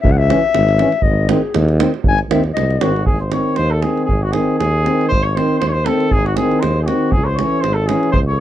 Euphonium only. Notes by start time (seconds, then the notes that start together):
0.30 E3
0.80 E3
1.30 D#3
1.81 D#3
2.30 D#3
2.81 D#3
3.33 D#3
3.84 D#3
4.34 D#3
4.86 D#3
5.36 D#3
5.86 D#3
6.38 D#3
6.87 D#3
7.39 E3
7.89 E3